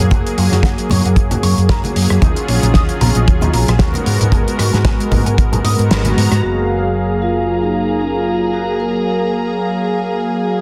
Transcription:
0.11 F#1 F#3 A#3 F#4 G#4, kick, closed hi-hat, high conga
0.27 closed hi-hat
0.38 F#2 F4, open hi-hat
0.52 F#2 F#4, snare, closed hi-hat, high conga
0.63 F#1 F#5, kick, snare, closed hi-hat
0.78 F#3, closed hi-hat
0.90 F#2 C#5, open hi-hat, high conga, low conga
1.05 F#2 F#5, closed hi-hat
1.16 kick, closed hi-hat
1.31 F#4, closed hi-hat, high conga, low conga
1.43 F#2 C#5, open hi-hat
1.58 F#2, closed hi-hat
1.69 F#1 F#3 A#3 G#4 A#4, kick, snare, closed hi-hat
1.84 F#3, closed hi-hat, high conga
1.96 F#2, open hi-hat
2.10 F#2, cross-stick, closed hi-hat
2.21 F#3 C#4 D#4 F4 G#4, kick, closed hi-hat, high conga
2.36 closed hi-hat
2.48 A#1 C#4, open hi-hat
2.63 A#1 D#4, closed hi-hat, high conga
2.74 D#2 D#5, kick, snare, closed hi-hat
2.89 D#3, closed hi-hat
3.01 A#1 A#4, open hi-hat, high conga, low conga
3.15 A#1 D#5, closed hi-hat
3.28 D#2, kick, closed hi-hat
3.41 D#4, closed hi-hat, high conga, low conga
3.53 A#1 A#4, open hi-hat
3.68 A#1, cross-stick, closed hi-hat
3.79 G#3 B3 F#4 A#4, kick, snare, closed hi-hat
3.94 D#3, closed hi-hat, high conga
4.06 G#2, open hi-hat
4.21 G#2, closed hi-hat, low conga
4.32 G#1 G#3 B3 F#4 G#4 A#4, kick, closed hi-hat, high conga
4.48 closed hi-hat
4.59 G#2 F#4, cross-stick, open hi-hat
4.73 G#2 G#4, snare, closed hi-hat, high conga
4.85 G#1 G#5, kick, snare, closed hi-hat
5.00 G#3, closed hi-hat
5.11 G#2 D#5, kick, open hi-hat, high conga, low conga
5.26 G#2 G#5, closed hi-hat
5.38 G#1, kick, closed hi-hat
5.52 G#4, closed hi-hat, high conga, low conga
5.64 G#2 G#3 B3 F#4 A#4 D#5, open hi-hat
5.79 G#2, closed hi-hat
5.90 G#1 B4, snare, closed hi-hat
6.04 G#3 B3 F#4 A#5, closed hi-hat, high conga
6.17 G#2, open hi-hat
6.31 G#2, cross-stick, closed hi-hat
6.42 F#1 F#3 A#3 F#4 G#4 F5 A#5
7.22 F4
7.63 D#4
8.01 C#4
8.15 F4
8.54 F#4
8.80 A#4

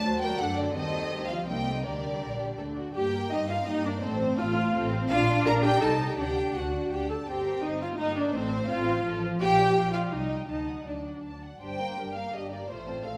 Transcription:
Already playing: A3 A5
0.04 D#2 F#3 F#4 C5
0.22 G3 A#4 G5
0.39 F#2 F#3 D4 A4 F#5
0.58 D3 D5
0.75 D#2 D#3 G3 C4 A4 C5 D#5
1.12 D2 G3 G4 C5
1.29 F3 F4 F5
1.47 C2 G3 A#3 D#4 D#5 G5
1.67 A3
1.84 D2 D3 G3 D4 G4 A#4 D5
2.21 A#1 A#4
2.39 G4
2.58 D2 A3 D4 A4
2.77 F#4
2.95 G2 A#3 G4 G5
3.14 A#4
3.31 G2 C4 D#4 G4 D#5
3.49 F4 A#4 F5
3.67 G2 A#3 D#4 G4 D#5
3.85 D4 A#4 D5
4.02 A1 A3 C4 A4 C5
4.20 C5
4.38 A1 F4 A4 F5
4.57 C5
4.74 A1 C4 A4
4.92 C5
5.09 A#1 D4 F4 F5
5.27 D5
5.46 A#1 A#4 F5 A#5
5.63 G4 D5 G5
5.81 C2 D#4 A4 C5 A5
5.99 D#5
6.09 G4 G5
6.17 D2 D4 G4 F#5 G5
6.37 D5
6.54 D2 F#4 F#5
6.72 D5
6.90 D2 G4 F#5 G5
7.08 A4 D5 A5
7.26 G1 C4 G4 G5
7.45 A#4
7.62 G1 D#4 G4 D#5
7.81 F4 A#4 F5
7.98 G1 A#3 D#4 G4 D#5
8.16 D4 A#4 D5
8.34 A1 A3 C4 A4 C5
8.52 C5
8.68 A1 C4 F4 A4 F5
8.87 C5
9.04 A1 F3 A4
9.22 C5
9.40 A#1 G4 F5 G5
9.58 D5
9.76 A#1 F5
9.94 F4 D5 F5
10.12 C2 G3 D#4 D#5
10.30 G5
10.49 D2 F#3 D#4 D#5 A5
10.68 F#5
10.86 D2 D4 D5 A5
11.05 F#5
11.24 D2 A5
11.42 F#5
11.61 G1 G2 D4 G4 C5 G5
11.79 A#3 A#4
11.97 G1 G2 D4 G4 A#4
12.15 A#3 A#4 F5
12.33 G1 G2 D4 G4 D#5
12.51 A#3 A#4 D5
12.69 A1 A2 A3 F4 C5
12.87 C4 A4
13.04 A1 A2 A3 A4 C5 F5

